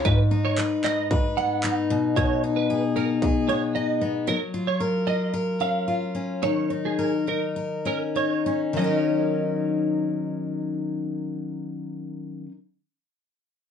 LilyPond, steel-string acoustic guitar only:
\new Staff \with { instrumentName = "Steel-string acoustic guitar" } { \time 4/4 \key ees \minor \tempo 4 = 108 aes,8 ees'8 ces''8 ees'8 ces''8 ces'8 ees'8 b,8 | b,8 dis'8 gis'8 dis'8 gis'8 b8 dis'8 b8 | ges8 f'8 bes'8 f'8 bes'8 des'8 f'8 des'8 | ees8 ees'8 bes'8 ees'8 bes'8 des'8 ees'8 des'8 |
<ees ges des' ees' bes'>1~ | <ees ges des' ees' bes'>1 | }